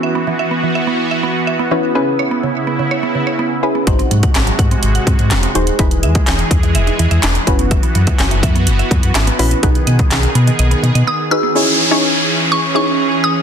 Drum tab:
HH |----------------|----------------|xxxxxxxxxxxxxxxx|xxxxxxxxxxxxxxxx|
CP |----------------|----------------|----x-------x---|----x-------x---|
SD |----------------|----------------|----o-------o---|----o-------o---|
BD |----------------|----------------|o--o--o---o-----|o--o--o-------o-|

HH |xxxxxxxxxxxxxxox|xxxxxxxxxxxx----|----------------|
CP |----x-------x---|----x-----------|----------------|
SD |----o-------o---|----o-----------|----------------|
BD |o--o--o---o-----|o--o------------|----------------|